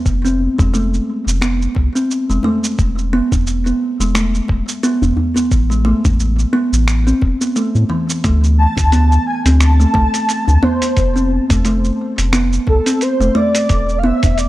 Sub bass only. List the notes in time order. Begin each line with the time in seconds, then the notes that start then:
0.06 F1
0.59 F1
1.27 F1
1.76 C2
2.29 F1
2.79 E1
3.32 E1
4.00 E1
4.49 D1
5.02 E1
5.51 A1
6.05 A1
6.73 A1
7.22 E1
7.75 A2
8.24 D2
8.78 D2
9.45 D2
9.95 C2
10.48 D2
10.97 F1
11.50 F1
12.18 F1
12.67 C2
13.20 F1
13.70 E1
14.23 E1